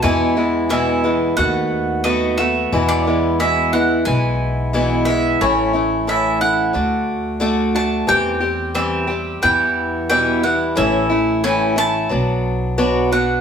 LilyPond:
<<
  \new Staff \with { instrumentName = "Mandolin" } { \time 4/4 \key e \mixolydian \tempo 4 = 89 gis''4 e''4 fis''4 dis''8 e''8~ | e''16 d''8. e''8 fis''8 gis''4. e''8 | cis''4 e''8 fis''2 a''8 | g''4 e''4 g''4 g''8 fis''8 |
e''4 gis''8 a''2 fis''8 | }
  \new Staff \with { instrumentName = "Steel-string acoustic guitar" } { \time 4/4 \key e \mixolydian <e, b, e gis b e'>8 <e gis b e'>8 <e, b, e gis b e'>8 <e gis b e'>8 <dis a b fis'>4 <dis a b fis'>8 <a b fis'>8 | <e, b, e gis b e'>8 <e gis b e'>8 <e, b, e gis b e'>8 <e gis b e'>8 <e gis b e'>4 <e, b, e gis b e'>8 <e gis b e'>8 | <a, e a cis' e'>8 <a cis' e'>8 <a, e a cis' e'>8 <a cis' e'>8 <d a d' fis'>4 <d a d' fis'>8 <a d' fis'>8 | <e g c' g'>8 <g c' g'>8 <e g c' g'>8 <g c' g'>8 <e g b e'>4 <e, b, e g b e'>8 <e g b e'>8 |
<a, e a cis' e'>8 <a cis' e'>8 <a, e a cis' e'>8 <a cis' e'>8 <fis b d' fis'>4 <b, fis b d' fis'>8 <b d' fis'>8 | }
  \new Staff \with { instrumentName = "Upright bass" } { \clef bass \time 4/4 \key e \mixolydian e,2 dis,2 | e,2 b,,2 | a,,2 d,2 | e,2 e,2 |
a,,2 b,,2 | }
>>